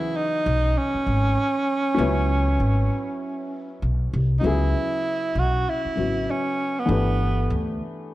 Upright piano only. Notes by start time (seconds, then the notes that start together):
Already playing: C#3 E3 F#3 B3 G#4
1.95 F#3 B3 C#4
2.00 E4 B4
4.41 C#3 F#3 B3
4.46 E4 G#4
5.95 C#3 F#3 B3 E4 F#4
6.86 E3 A3 D4
6.91 G4 B4